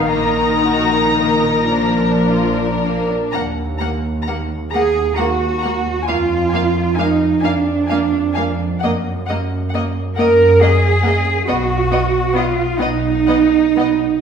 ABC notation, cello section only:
X:1
M:6/8
L:1/8
Q:3/8=44
K:Ebm
V:1 name="Cello section"
B,,6 | z3 A G2 | F2 E =D3 | z3 B A2 |
^F2 =F ^D3 |]